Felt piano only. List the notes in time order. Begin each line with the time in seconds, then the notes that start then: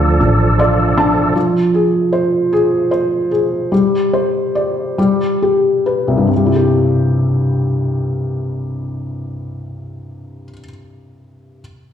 Already playing: D3 D4 F4
0.20 D4
0.59 F4 D5
0.97 D4 A5
1.36 F3
1.74 G#4
2.13 C5
2.53 G#4
2.91 C5
3.31 G#4
3.72 G3
4.13 C5
4.55 D5
4.98 G3
5.42 G4
5.86 B4
6.08 C2
6.17 G2
6.27 C3
6.37 G3
6.46 E4
6.56 G4